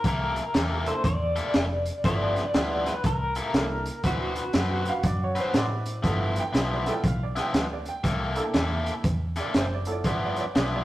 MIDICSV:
0, 0, Header, 1, 7, 480
1, 0, Start_track
1, 0, Tempo, 500417
1, 47, Time_signature, 4, 2, 24, 8
1, 10399, End_track
2, 0, Start_track
2, 0, Title_t, "Upright piano"
2, 0, Program_c, 0, 0
2, 4693, Note_on_c, 0, 77, 97
2, 4842, Note_off_c, 0, 77, 0
2, 4857, Note_on_c, 0, 74, 77
2, 5004, Note_off_c, 0, 74, 0
2, 5023, Note_on_c, 0, 73, 83
2, 5167, Note_off_c, 0, 73, 0
2, 5186, Note_on_c, 0, 72, 81
2, 5328, Note_off_c, 0, 72, 0
2, 5335, Note_on_c, 0, 74, 84
2, 5708, Note_off_c, 0, 74, 0
2, 10399, End_track
3, 0, Start_track
3, 0, Title_t, "Clean electric guitar"
3, 0, Program_c, 1, 27
3, 66, Note_on_c, 1, 70, 89
3, 837, Note_off_c, 1, 70, 0
3, 841, Note_on_c, 1, 72, 96
3, 999, Note_off_c, 1, 72, 0
3, 1005, Note_on_c, 1, 74, 111
3, 1959, Note_off_c, 1, 74, 0
3, 1970, Note_on_c, 1, 74, 94
3, 2753, Note_off_c, 1, 74, 0
3, 2757, Note_on_c, 1, 71, 93
3, 2932, Note_off_c, 1, 71, 0
3, 2938, Note_on_c, 1, 70, 102
3, 3850, Note_off_c, 1, 70, 0
3, 3903, Note_on_c, 1, 66, 75
3, 5292, Note_off_c, 1, 66, 0
3, 10399, End_track
4, 0, Start_track
4, 0, Title_t, "Grand piano"
4, 0, Program_c, 2, 0
4, 826, Note_on_c, 2, 58, 66
4, 829, Note_on_c, 2, 64, 55
4, 829, Note_on_c, 2, 69, 73
4, 831, Note_on_c, 2, 62, 61
4, 986, Note_off_c, 2, 58, 0
4, 987, Note_off_c, 2, 64, 0
4, 987, Note_off_c, 2, 69, 0
4, 988, Note_off_c, 2, 62, 0
4, 1959, Note_on_c, 2, 59, 62
4, 1960, Note_on_c, 2, 64, 53
4, 1963, Note_on_c, 2, 69, 66
4, 1964, Note_on_c, 2, 65, 52
4, 2235, Note_off_c, 2, 59, 0
4, 2235, Note_off_c, 2, 64, 0
4, 2237, Note_off_c, 2, 65, 0
4, 2237, Note_off_c, 2, 69, 0
4, 2446, Note_on_c, 2, 59, 64
4, 2447, Note_on_c, 2, 64, 63
4, 2448, Note_on_c, 2, 65, 57
4, 2449, Note_on_c, 2, 67, 66
4, 2718, Note_off_c, 2, 59, 0
4, 2718, Note_off_c, 2, 64, 0
4, 2719, Note_off_c, 2, 65, 0
4, 2719, Note_off_c, 2, 67, 0
4, 3403, Note_on_c, 2, 62, 60
4, 3405, Note_on_c, 2, 58, 59
4, 3408, Note_on_c, 2, 64, 56
4, 3412, Note_on_c, 2, 69, 69
4, 3676, Note_off_c, 2, 62, 0
4, 3677, Note_off_c, 2, 58, 0
4, 3678, Note_off_c, 2, 64, 0
4, 3680, Note_off_c, 2, 69, 0
4, 3878, Note_on_c, 2, 60, 59
4, 3878, Note_on_c, 2, 64, 55
4, 3881, Note_on_c, 2, 66, 56
4, 3881, Note_on_c, 2, 71, 68
4, 4153, Note_off_c, 2, 60, 0
4, 4153, Note_off_c, 2, 64, 0
4, 4154, Note_off_c, 2, 66, 0
4, 4154, Note_off_c, 2, 71, 0
4, 5314, Note_on_c, 2, 60, 50
4, 5318, Note_on_c, 2, 66, 43
4, 5320, Note_on_c, 2, 64, 47
4, 5320, Note_on_c, 2, 71, 57
4, 5782, Note_off_c, 2, 64, 0
4, 5794, Note_on_c, 2, 59, 59
4, 5796, Note_off_c, 2, 60, 0
4, 5796, Note_on_c, 2, 64, 57
4, 5797, Note_on_c, 2, 53, 56
4, 5799, Note_off_c, 2, 66, 0
4, 5800, Note_off_c, 2, 71, 0
4, 5801, Note_on_c, 2, 69, 71
4, 6096, Note_on_c, 2, 78, 64
4, 6135, Note_off_c, 2, 78, 0
4, 6138, Note_on_c, 2, 79, 93
4, 6284, Note_off_c, 2, 79, 0
4, 6299, Note_on_c, 2, 77, 71
4, 6445, Note_off_c, 2, 77, 0
4, 6461, Note_on_c, 2, 74, 73
4, 6520, Note_off_c, 2, 59, 0
4, 6521, Note_off_c, 2, 64, 0
4, 6522, Note_off_c, 2, 53, 0
4, 6524, Note_off_c, 2, 69, 0
4, 6575, Note_on_c, 2, 78, 59
4, 6581, Note_on_c, 2, 59, 66
4, 6585, Note_on_c, 2, 64, 60
4, 6587, Note_on_c, 2, 65, 64
4, 6588, Note_on_c, 2, 69, 76
4, 6606, Note_off_c, 2, 74, 0
4, 6614, Note_off_c, 2, 78, 0
4, 6620, Note_on_c, 2, 79, 91
4, 6740, Note_off_c, 2, 59, 0
4, 6743, Note_off_c, 2, 64, 0
4, 6743, Note_off_c, 2, 65, 0
4, 6744, Note_off_c, 2, 69, 0
4, 6765, Note_off_c, 2, 79, 0
4, 6787, Note_on_c, 2, 77, 85
4, 6929, Note_off_c, 2, 77, 0
4, 6939, Note_on_c, 2, 74, 74
4, 7052, Note_on_c, 2, 78, 59
4, 7085, Note_off_c, 2, 74, 0
4, 7092, Note_off_c, 2, 78, 0
4, 7097, Note_on_c, 2, 79, 91
4, 7244, Note_off_c, 2, 79, 0
4, 7256, Note_on_c, 2, 77, 78
4, 7403, Note_off_c, 2, 77, 0
4, 7414, Note_on_c, 2, 74, 74
4, 7562, Note_off_c, 2, 74, 0
4, 7565, Note_on_c, 2, 79, 79
4, 8021, Note_on_c, 2, 58, 70
4, 8024, Note_on_c, 2, 62, 62
4, 8025, Note_on_c, 2, 69, 78
4, 8028, Note_on_c, 2, 64, 60
4, 8494, Note_off_c, 2, 79, 0
4, 8644, Note_off_c, 2, 58, 0
4, 8645, Note_off_c, 2, 62, 0
4, 8646, Note_off_c, 2, 69, 0
4, 8648, Note_off_c, 2, 64, 0
4, 9018, Note_on_c, 2, 74, 81
4, 9165, Note_off_c, 2, 74, 0
4, 9176, Note_on_c, 2, 72, 88
4, 9325, Note_off_c, 2, 72, 0
4, 9344, Note_on_c, 2, 74, 80
4, 9464, Note_on_c, 2, 59, 55
4, 9466, Note_on_c, 2, 64, 54
4, 9467, Note_on_c, 2, 69, 64
4, 9469, Note_on_c, 2, 65, 51
4, 9471, Note_on_c, 2, 73, 52
4, 9489, Note_off_c, 2, 74, 0
4, 9507, Note_off_c, 2, 73, 0
4, 9514, Note_on_c, 2, 74, 81
4, 9623, Note_off_c, 2, 59, 0
4, 9624, Note_off_c, 2, 64, 0
4, 9625, Note_off_c, 2, 69, 0
4, 9626, Note_off_c, 2, 65, 0
4, 9647, Note_off_c, 2, 74, 0
4, 9662, Note_on_c, 2, 74, 87
4, 9808, Note_off_c, 2, 74, 0
4, 9832, Note_on_c, 2, 74, 84
4, 9943, Note_on_c, 2, 73, 58
4, 9970, Note_off_c, 2, 74, 0
4, 9981, Note_off_c, 2, 73, 0
4, 9985, Note_on_c, 2, 74, 86
4, 10130, Note_off_c, 2, 74, 0
4, 10149, Note_on_c, 2, 74, 87
4, 10292, Note_off_c, 2, 74, 0
4, 10320, Note_on_c, 2, 74, 86
4, 10399, Note_off_c, 2, 74, 0
4, 10399, End_track
5, 0, Start_track
5, 0, Title_t, "Overdriven electric guitar"
5, 0, Program_c, 3, 29
5, 45, Note_on_c, 3, 48, 78
5, 51, Note_on_c, 3, 58, 84
5, 52, Note_on_c, 3, 64, 89
5, 58, Note_on_c, 3, 69, 90
5, 402, Note_off_c, 3, 48, 0
5, 406, Note_off_c, 3, 58, 0
5, 406, Note_off_c, 3, 64, 0
5, 409, Note_off_c, 3, 69, 0
5, 521, Note_on_c, 3, 48, 87
5, 525, Note_on_c, 3, 58, 85
5, 530, Note_on_c, 3, 64, 86
5, 532, Note_on_c, 3, 69, 91
5, 880, Note_off_c, 3, 48, 0
5, 882, Note_off_c, 3, 58, 0
5, 884, Note_off_c, 3, 64, 0
5, 885, Note_off_c, 3, 69, 0
5, 1303, Note_on_c, 3, 69, 101
5, 1310, Note_on_c, 3, 64, 90
5, 1314, Note_on_c, 3, 58, 82
5, 1315, Note_on_c, 3, 48, 74
5, 1572, Note_off_c, 3, 69, 0
5, 1576, Note_off_c, 3, 64, 0
5, 1578, Note_off_c, 3, 48, 0
5, 1578, Note_off_c, 3, 58, 0
5, 1962, Note_on_c, 3, 43, 77
5, 1965, Note_on_c, 3, 53, 89
5, 1972, Note_on_c, 3, 59, 82
5, 1975, Note_on_c, 3, 64, 90
5, 2319, Note_off_c, 3, 43, 0
5, 2321, Note_off_c, 3, 53, 0
5, 2324, Note_off_c, 3, 59, 0
5, 2326, Note_off_c, 3, 64, 0
5, 2440, Note_on_c, 3, 43, 81
5, 2444, Note_on_c, 3, 53, 84
5, 2450, Note_on_c, 3, 59, 89
5, 2452, Note_on_c, 3, 64, 82
5, 2798, Note_off_c, 3, 43, 0
5, 2800, Note_off_c, 3, 53, 0
5, 2803, Note_off_c, 3, 59, 0
5, 2804, Note_off_c, 3, 64, 0
5, 3225, Note_on_c, 3, 69, 92
5, 3227, Note_on_c, 3, 64, 82
5, 3231, Note_on_c, 3, 58, 88
5, 3233, Note_on_c, 3, 48, 69
5, 3492, Note_off_c, 3, 69, 0
5, 3493, Note_off_c, 3, 64, 0
5, 3495, Note_off_c, 3, 58, 0
5, 3496, Note_off_c, 3, 48, 0
5, 3875, Note_on_c, 3, 50, 77
5, 3883, Note_on_c, 3, 60, 85
5, 3883, Note_on_c, 3, 66, 87
5, 3888, Note_on_c, 3, 71, 91
5, 4235, Note_off_c, 3, 50, 0
5, 4238, Note_off_c, 3, 60, 0
5, 4238, Note_off_c, 3, 66, 0
5, 4241, Note_off_c, 3, 71, 0
5, 4352, Note_on_c, 3, 50, 81
5, 4356, Note_on_c, 3, 60, 92
5, 4360, Note_on_c, 3, 66, 97
5, 4363, Note_on_c, 3, 71, 91
5, 4713, Note_off_c, 3, 50, 0
5, 4715, Note_off_c, 3, 60, 0
5, 4717, Note_off_c, 3, 66, 0
5, 4718, Note_off_c, 3, 71, 0
5, 5136, Note_on_c, 3, 71, 83
5, 5140, Note_on_c, 3, 66, 83
5, 5144, Note_on_c, 3, 50, 68
5, 5144, Note_on_c, 3, 60, 79
5, 5407, Note_off_c, 3, 71, 0
5, 5409, Note_off_c, 3, 66, 0
5, 5411, Note_off_c, 3, 50, 0
5, 5411, Note_off_c, 3, 60, 0
5, 5780, Note_on_c, 3, 43, 78
5, 5788, Note_on_c, 3, 53, 89
5, 5793, Note_on_c, 3, 59, 78
5, 5795, Note_on_c, 3, 64, 84
5, 6147, Note_off_c, 3, 43, 0
5, 6151, Note_off_c, 3, 53, 0
5, 6153, Note_off_c, 3, 59, 0
5, 6154, Note_off_c, 3, 64, 0
5, 6261, Note_on_c, 3, 43, 79
5, 6270, Note_on_c, 3, 53, 82
5, 6270, Note_on_c, 3, 59, 92
5, 6275, Note_on_c, 3, 64, 88
5, 6627, Note_off_c, 3, 43, 0
5, 6632, Note_off_c, 3, 53, 0
5, 6632, Note_off_c, 3, 59, 0
5, 6634, Note_off_c, 3, 64, 0
5, 7057, Note_on_c, 3, 64, 87
5, 7061, Note_on_c, 3, 59, 88
5, 7065, Note_on_c, 3, 53, 78
5, 7069, Note_on_c, 3, 43, 76
5, 7328, Note_off_c, 3, 64, 0
5, 7330, Note_off_c, 3, 59, 0
5, 7331, Note_off_c, 3, 53, 0
5, 7333, Note_off_c, 3, 43, 0
5, 7709, Note_on_c, 3, 48, 82
5, 7712, Note_on_c, 3, 58, 87
5, 7720, Note_on_c, 3, 64, 86
5, 7720, Note_on_c, 3, 69, 84
5, 8072, Note_off_c, 3, 48, 0
5, 8073, Note_off_c, 3, 58, 0
5, 8078, Note_off_c, 3, 64, 0
5, 8078, Note_off_c, 3, 69, 0
5, 8189, Note_on_c, 3, 48, 82
5, 8196, Note_on_c, 3, 58, 76
5, 8201, Note_on_c, 3, 64, 93
5, 8204, Note_on_c, 3, 69, 90
5, 8552, Note_off_c, 3, 48, 0
5, 8556, Note_off_c, 3, 58, 0
5, 8558, Note_off_c, 3, 64, 0
5, 8560, Note_off_c, 3, 69, 0
5, 8981, Note_on_c, 3, 69, 92
5, 8985, Note_on_c, 3, 64, 90
5, 8989, Note_on_c, 3, 58, 82
5, 8993, Note_on_c, 3, 48, 79
5, 9251, Note_off_c, 3, 69, 0
5, 9252, Note_off_c, 3, 64, 0
5, 9255, Note_off_c, 3, 58, 0
5, 9257, Note_off_c, 3, 48, 0
5, 9645, Note_on_c, 3, 43, 82
5, 9650, Note_on_c, 3, 53, 87
5, 9655, Note_on_c, 3, 59, 90
5, 9658, Note_on_c, 3, 64, 86
5, 10001, Note_off_c, 3, 43, 0
5, 10004, Note_off_c, 3, 53, 0
5, 10006, Note_off_c, 3, 59, 0
5, 10008, Note_off_c, 3, 64, 0
5, 10123, Note_on_c, 3, 43, 94
5, 10128, Note_on_c, 3, 53, 83
5, 10130, Note_on_c, 3, 59, 94
5, 10136, Note_on_c, 3, 64, 88
5, 10399, Note_off_c, 3, 43, 0
5, 10399, Note_off_c, 3, 53, 0
5, 10399, Note_off_c, 3, 59, 0
5, 10399, Note_off_c, 3, 64, 0
5, 10399, End_track
6, 0, Start_track
6, 0, Title_t, "Fingered electric bass"
6, 0, Program_c, 4, 33
6, 41, Note_on_c, 4, 36, 95
6, 376, Note_off_c, 4, 36, 0
6, 526, Note_on_c, 4, 40, 86
6, 859, Note_off_c, 4, 40, 0
6, 999, Note_on_c, 4, 40, 97
6, 1334, Note_off_c, 4, 40, 0
6, 1481, Note_on_c, 4, 29, 86
6, 1815, Note_off_c, 4, 29, 0
6, 1957, Note_on_c, 4, 31, 92
6, 2292, Note_off_c, 4, 31, 0
6, 2439, Note_on_c, 4, 38, 87
6, 2773, Note_off_c, 4, 38, 0
6, 2918, Note_on_c, 4, 36, 92
6, 3252, Note_off_c, 4, 36, 0
6, 3393, Note_on_c, 4, 36, 81
6, 3729, Note_off_c, 4, 36, 0
6, 3874, Note_on_c, 4, 38, 98
6, 4209, Note_off_c, 4, 38, 0
6, 4355, Note_on_c, 4, 42, 90
6, 4690, Note_off_c, 4, 42, 0
6, 4830, Note_on_c, 4, 42, 89
6, 5167, Note_off_c, 4, 42, 0
6, 5309, Note_on_c, 4, 45, 82
6, 5791, Note_on_c, 4, 31, 93
6, 5806, Note_off_c, 4, 45, 0
6, 6127, Note_off_c, 4, 31, 0
6, 6273, Note_on_c, 4, 35, 94
6, 6609, Note_off_c, 4, 35, 0
6, 6750, Note_on_c, 4, 35, 92
6, 7087, Note_off_c, 4, 35, 0
6, 7229, Note_on_c, 4, 38, 84
6, 7566, Note_off_c, 4, 38, 0
6, 7709, Note_on_c, 4, 36, 100
6, 8047, Note_off_c, 4, 36, 0
6, 8193, Note_on_c, 4, 40, 92
6, 8529, Note_off_c, 4, 40, 0
6, 8672, Note_on_c, 4, 40, 91
6, 9009, Note_off_c, 4, 40, 0
6, 9161, Note_on_c, 4, 30, 86
6, 9633, Note_off_c, 4, 30, 0
6, 9633, Note_on_c, 4, 31, 94
6, 9970, Note_off_c, 4, 31, 0
6, 10122, Note_on_c, 4, 35, 90
6, 10399, Note_off_c, 4, 35, 0
6, 10399, End_track
7, 0, Start_track
7, 0, Title_t, "Drums"
7, 40, Note_on_c, 9, 36, 97
7, 42, Note_on_c, 9, 42, 78
7, 136, Note_off_c, 9, 36, 0
7, 138, Note_off_c, 9, 42, 0
7, 346, Note_on_c, 9, 42, 54
7, 442, Note_off_c, 9, 42, 0
7, 520, Note_on_c, 9, 42, 77
7, 525, Note_on_c, 9, 38, 97
7, 616, Note_off_c, 9, 42, 0
7, 621, Note_off_c, 9, 38, 0
7, 826, Note_on_c, 9, 42, 54
7, 922, Note_off_c, 9, 42, 0
7, 998, Note_on_c, 9, 36, 107
7, 1000, Note_on_c, 9, 42, 70
7, 1094, Note_off_c, 9, 36, 0
7, 1096, Note_off_c, 9, 42, 0
7, 1305, Note_on_c, 9, 42, 57
7, 1401, Note_off_c, 9, 42, 0
7, 1473, Note_on_c, 9, 42, 77
7, 1478, Note_on_c, 9, 38, 105
7, 1569, Note_off_c, 9, 42, 0
7, 1574, Note_off_c, 9, 38, 0
7, 1780, Note_on_c, 9, 42, 65
7, 1876, Note_off_c, 9, 42, 0
7, 1958, Note_on_c, 9, 36, 105
7, 1958, Note_on_c, 9, 42, 71
7, 1962, Note_on_c, 9, 38, 26
7, 2053, Note_off_c, 9, 42, 0
7, 2054, Note_off_c, 9, 36, 0
7, 2058, Note_off_c, 9, 38, 0
7, 2266, Note_on_c, 9, 42, 56
7, 2271, Note_on_c, 9, 38, 31
7, 2362, Note_off_c, 9, 42, 0
7, 2367, Note_off_c, 9, 38, 0
7, 2436, Note_on_c, 9, 42, 77
7, 2441, Note_on_c, 9, 38, 113
7, 2532, Note_off_c, 9, 42, 0
7, 2537, Note_off_c, 9, 38, 0
7, 2745, Note_on_c, 9, 42, 64
7, 2750, Note_on_c, 9, 38, 30
7, 2841, Note_off_c, 9, 42, 0
7, 2846, Note_off_c, 9, 38, 0
7, 2913, Note_on_c, 9, 42, 78
7, 2916, Note_on_c, 9, 36, 100
7, 3009, Note_off_c, 9, 42, 0
7, 3012, Note_off_c, 9, 36, 0
7, 3214, Note_on_c, 9, 42, 62
7, 3310, Note_off_c, 9, 42, 0
7, 3394, Note_on_c, 9, 42, 80
7, 3399, Note_on_c, 9, 38, 108
7, 3490, Note_off_c, 9, 42, 0
7, 3495, Note_off_c, 9, 38, 0
7, 3699, Note_on_c, 9, 42, 64
7, 3795, Note_off_c, 9, 42, 0
7, 3870, Note_on_c, 9, 42, 69
7, 3873, Note_on_c, 9, 36, 91
7, 3966, Note_off_c, 9, 42, 0
7, 3969, Note_off_c, 9, 36, 0
7, 4178, Note_on_c, 9, 42, 61
7, 4273, Note_off_c, 9, 42, 0
7, 4347, Note_on_c, 9, 42, 76
7, 4352, Note_on_c, 9, 38, 95
7, 4443, Note_off_c, 9, 42, 0
7, 4448, Note_off_c, 9, 38, 0
7, 4655, Note_on_c, 9, 42, 54
7, 4751, Note_off_c, 9, 42, 0
7, 4827, Note_on_c, 9, 42, 71
7, 4831, Note_on_c, 9, 36, 106
7, 4923, Note_off_c, 9, 42, 0
7, 4927, Note_off_c, 9, 36, 0
7, 5137, Note_on_c, 9, 42, 56
7, 5233, Note_off_c, 9, 42, 0
7, 5311, Note_on_c, 9, 42, 82
7, 5316, Note_on_c, 9, 38, 109
7, 5407, Note_off_c, 9, 42, 0
7, 5412, Note_off_c, 9, 38, 0
7, 5618, Note_on_c, 9, 42, 64
7, 5714, Note_off_c, 9, 42, 0
7, 5791, Note_on_c, 9, 36, 94
7, 5793, Note_on_c, 9, 42, 74
7, 5797, Note_on_c, 9, 38, 27
7, 5887, Note_off_c, 9, 36, 0
7, 5888, Note_off_c, 9, 42, 0
7, 5893, Note_off_c, 9, 38, 0
7, 6099, Note_on_c, 9, 42, 57
7, 6195, Note_off_c, 9, 42, 0
7, 6275, Note_on_c, 9, 42, 79
7, 6280, Note_on_c, 9, 38, 93
7, 6371, Note_off_c, 9, 42, 0
7, 6376, Note_off_c, 9, 38, 0
7, 6582, Note_on_c, 9, 42, 58
7, 6586, Note_on_c, 9, 38, 32
7, 6678, Note_off_c, 9, 42, 0
7, 6682, Note_off_c, 9, 38, 0
7, 6750, Note_on_c, 9, 36, 100
7, 6751, Note_on_c, 9, 42, 78
7, 6846, Note_off_c, 9, 36, 0
7, 6847, Note_off_c, 9, 42, 0
7, 7060, Note_on_c, 9, 42, 58
7, 7065, Note_on_c, 9, 38, 31
7, 7156, Note_off_c, 9, 42, 0
7, 7161, Note_off_c, 9, 38, 0
7, 7232, Note_on_c, 9, 42, 80
7, 7237, Note_on_c, 9, 38, 106
7, 7328, Note_off_c, 9, 42, 0
7, 7333, Note_off_c, 9, 38, 0
7, 7534, Note_on_c, 9, 42, 59
7, 7630, Note_off_c, 9, 42, 0
7, 7710, Note_on_c, 9, 36, 91
7, 7710, Note_on_c, 9, 42, 80
7, 7714, Note_on_c, 9, 38, 27
7, 7805, Note_off_c, 9, 42, 0
7, 7806, Note_off_c, 9, 36, 0
7, 7810, Note_off_c, 9, 38, 0
7, 8015, Note_on_c, 9, 42, 57
7, 8111, Note_off_c, 9, 42, 0
7, 8190, Note_on_c, 9, 42, 73
7, 8195, Note_on_c, 9, 38, 106
7, 8286, Note_off_c, 9, 42, 0
7, 8290, Note_off_c, 9, 38, 0
7, 8500, Note_on_c, 9, 42, 56
7, 8596, Note_off_c, 9, 42, 0
7, 8670, Note_on_c, 9, 42, 74
7, 8672, Note_on_c, 9, 36, 103
7, 8765, Note_off_c, 9, 42, 0
7, 8768, Note_off_c, 9, 36, 0
7, 8975, Note_on_c, 9, 42, 53
7, 8980, Note_on_c, 9, 38, 30
7, 9071, Note_off_c, 9, 42, 0
7, 9076, Note_off_c, 9, 38, 0
7, 9150, Note_on_c, 9, 42, 77
7, 9155, Note_on_c, 9, 38, 111
7, 9246, Note_off_c, 9, 42, 0
7, 9251, Note_off_c, 9, 38, 0
7, 9450, Note_on_c, 9, 42, 63
7, 9545, Note_off_c, 9, 42, 0
7, 9630, Note_on_c, 9, 42, 68
7, 9634, Note_on_c, 9, 36, 97
7, 9635, Note_on_c, 9, 38, 29
7, 9726, Note_off_c, 9, 42, 0
7, 9730, Note_off_c, 9, 36, 0
7, 9731, Note_off_c, 9, 38, 0
7, 9939, Note_on_c, 9, 42, 54
7, 10034, Note_off_c, 9, 42, 0
7, 10121, Note_on_c, 9, 42, 72
7, 10126, Note_on_c, 9, 38, 109
7, 10217, Note_off_c, 9, 42, 0
7, 10222, Note_off_c, 9, 38, 0
7, 10399, End_track
0, 0, End_of_file